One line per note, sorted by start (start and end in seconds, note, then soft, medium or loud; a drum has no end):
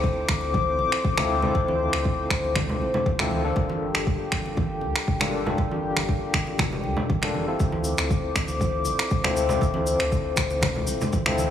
0.00 0.24 D2 medium
0.00 1.17 C4 medium
0.00 1.16 E4 medium
0.00 1.16 F4 medium
0.00 1.16 A4 loud
0.00 3.53 C5 medium
0.00 3.53 D6 medium
0.00 kick loud
0.28 0.80 D2 loud
0.28 finger snap medium
0.28 kick medium
0.28 high conga medium
0.41 muted conga soft
0.54 kick loud
0.54 high conga medium
0.79 0.89 A1 medium
0.79 muted conga soft
0.92 finger snap medium
1.05 kick loud
1.17 1.50 D2 medium
1.17 1.40 C4 medium
1.17 1.40 E4 medium
1.17 1.40 F4 medium
1.17 1.40 A4 loud
1.17 finger snap medium
1.17 muted conga medium
1.17 high conga medium
1.17 low conga loud
1.42 3.16 C4 medium
1.42 3.16 E4 medium
1.42 3.16 F4 medium
1.42 3.16 A4 medium
1.42 low conga loud
1.55 1.88 D2 loud
1.55 kick loud
1.55 muted conga medium
1.68 high conga loud
1.93 2.26 D2 medium
1.93 finger snap medium
1.93 muted conga soft
2.05 kick loud
2.30 2.82 D2 loud
2.30 finger snap medium
2.30 kick medium
2.30 high conga medium
2.44 muted conga soft
2.56 finger snap medium
2.56 kick loud
2.56 high conga medium
2.56 low conga medium
2.69 low conga loud
2.81 2.91 A1 medium
2.81 muted conga soft
2.94 low conga medium
3.06 kick loud
3.06 high conga medium
3.19 3.52 D2 medium
3.19 3.41 C4 loud
3.19 3.41 E4 medium
3.19 3.41 F4 medium
3.19 3.41 A4 loud
3.19 finger snap medium
3.19 muted conga soft
3.19 low conga loud
3.31 high conga medium
3.44 5.18 A#3 medium
3.44 5.18 D4 medium
3.44 5.18 F4 medium
3.44 5.18 A4 medium
3.56 3.90 G1 loud
3.56 7.56 G4 medium
3.56 kick loud
3.56 muted conga soft
3.69 high conga medium
3.94 4.28 G1 medium
3.94 finger snap medium
3.94 muted conga soft
4.07 kick loud
4.32 4.84 G1 loud
4.32 finger snap medium
4.32 kick medium
4.32 high conga medium
4.46 muted conga soft
4.57 kick loud
4.57 high conga medium
4.81 4.93 D2 medium
4.81 muted conga soft
4.96 finger snap medium
5.08 kick loud
5.20 5.54 G1 medium
5.20 5.43 A#3 medium
5.20 5.43 D4 medium
5.20 5.43 F4 medium
5.20 5.43 A4 loud
5.20 finger snap medium
5.20 muted conga soft
5.20 high conga medium
5.20 low conga loud
5.46 7.19 A#3 medium
5.46 7.19 D4 medium
5.46 7.19 F4 medium
5.46 7.19 A4 medium
5.46 low conga loud
5.58 5.92 G1 medium
5.58 kick loud
5.58 muted conga soft
5.71 high conga medium
5.97 6.29 G1 medium
5.97 finger snap medium
5.97 muted conga soft
5.97 high conga medium
6.09 kick loud
6.33 6.86 G1 loud
6.33 finger snap medium
6.33 kick medium
6.33 high conga medium
6.47 muted conga medium
6.58 finger snap medium
6.58 kick loud
6.58 high conga medium
6.58 low conga loud
6.72 low conga loud
6.84 6.94 D2 loud
6.84 muted conga soft
6.97 low conga loud
7.10 kick loud
7.10 high conga medium
7.22 7.55 F1 medium
7.22 7.45 A#3 medium
7.22 7.45 D4 medium
7.22 7.45 F4 medium
7.22 7.45 A4 loud
7.22 finger snap medium
7.22 muted conga medium
7.22 low conga loud
7.34 high conga medium
7.48 9.21 C4 medium
7.48 9.21 E4 medium
7.48 9.21 F4 medium
7.48 9.21 A4 medium
7.59 7.93 D2 loud
7.59 11.50 C5 medium
7.59 11.50 D6 medium
7.59 kick loud
7.59 muted conga medium
7.59 cabasa soft
7.72 high conga loud
7.84 cabasa medium
7.98 8.31 D2 medium
7.98 finger snap medium
7.98 muted conga soft
7.98 cabasa soft
8.11 kick loud
8.11 cabasa soft
8.35 8.87 D2 loud
8.35 finger snap loud
8.35 kick medium
8.35 high conga medium
8.35 cabasa medium
8.48 muted conga medium
8.48 cabasa soft
8.60 kick loud
8.60 high conga medium
8.60 cabasa soft
8.85 8.96 A1 medium
8.85 muted conga soft
8.85 cabasa medium
8.99 finger snap medium
8.99 cabasa soft
9.10 kick loud
9.10 cabasa soft
9.24 9.57 D2 medium
9.24 9.46 C4 loud
9.24 9.46 E4 medium
9.24 9.46 F4 medium
9.24 9.46 A4 loud
9.24 finger snap medium
9.24 muted conga medium
9.24 high conga medium
9.24 low conga loud
9.37 cabasa medium
9.49 11.23 C4 medium
9.49 11.23 E4 medium
9.49 11.23 F4 medium
9.49 11.23 A4 medium
9.49 low conga loud
9.49 cabasa soft
9.61 9.95 D2 loud
9.61 kick loud
9.61 muted conga soft
9.61 cabasa soft
9.74 high conga loud
9.87 cabasa medium
10.00 10.32 D2 medium
10.00 finger snap medium
10.00 muted conga soft
10.00 cabasa soft
10.12 kick loud
10.12 cabasa soft
10.36 10.89 D2 loud
10.36 finger snap medium
10.36 kick medium
10.36 high conga medium
10.36 cabasa loud
10.50 muted conga medium
10.50 cabasa soft
10.61 finger snap loud
10.61 kick loud
10.61 high conga medium
10.61 low conga medium
10.61 cabasa soft
10.76 low conga loud
10.87 10.98 A1 medium
10.87 muted conga soft
10.87 cabasa loud
11.01 low conga loud
11.01 cabasa medium
11.13 kick loud
11.13 high conga loud
11.13 cabasa soft
11.26 11.50 D2 medium
11.26 11.48 C4 loud
11.26 11.48 E4 medium
11.26 11.48 F4 medium
11.26 11.48 A4 loud
11.26 finger snap loud
11.26 muted conga medium
11.26 low conga loud
11.38 high conga medium
11.38 cabasa medium